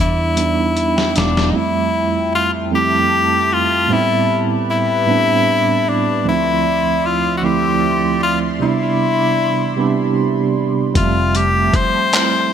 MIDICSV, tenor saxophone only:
0, 0, Header, 1, 2, 480
1, 0, Start_track
1, 0, Tempo, 784314
1, 946, Time_signature, 6, 3, 24, 8
1, 7670, End_track
2, 0, Start_track
2, 0, Title_t, "Tenor saxophone"
2, 0, Program_c, 0, 66
2, 4, Note_on_c, 0, 64, 100
2, 721, Note_on_c, 0, 62, 84
2, 730, Note_off_c, 0, 64, 0
2, 920, Note_on_c, 0, 63, 65
2, 929, Note_off_c, 0, 62, 0
2, 957, Note_on_c, 0, 64, 109
2, 967, Note_off_c, 0, 63, 0
2, 1431, Note_off_c, 0, 64, 0
2, 1440, Note_on_c, 0, 65, 105
2, 1538, Note_off_c, 0, 65, 0
2, 1686, Note_on_c, 0, 67, 111
2, 2161, Note_on_c, 0, 65, 110
2, 2170, Note_off_c, 0, 67, 0
2, 2404, Note_on_c, 0, 64, 101
2, 2413, Note_off_c, 0, 65, 0
2, 2709, Note_off_c, 0, 64, 0
2, 2881, Note_on_c, 0, 64, 119
2, 3606, Note_on_c, 0, 62, 95
2, 3615, Note_off_c, 0, 64, 0
2, 3835, Note_off_c, 0, 62, 0
2, 3847, Note_on_c, 0, 64, 104
2, 4319, Note_on_c, 0, 65, 98
2, 4329, Note_off_c, 0, 64, 0
2, 4510, Note_off_c, 0, 65, 0
2, 4514, Note_on_c, 0, 66, 70
2, 4556, Note_on_c, 0, 67, 105
2, 4565, Note_off_c, 0, 66, 0
2, 5031, Note_off_c, 0, 67, 0
2, 5038, Note_on_c, 0, 65, 92
2, 5136, Note_off_c, 0, 65, 0
2, 5277, Note_on_c, 0, 64, 98
2, 6206, Note_off_c, 0, 64, 0
2, 6713, Note_on_c, 0, 65, 96
2, 6951, Note_on_c, 0, 67, 109
2, 6960, Note_off_c, 0, 65, 0
2, 7196, Note_on_c, 0, 72, 117
2, 7205, Note_off_c, 0, 67, 0
2, 7670, Note_off_c, 0, 72, 0
2, 7670, End_track
0, 0, End_of_file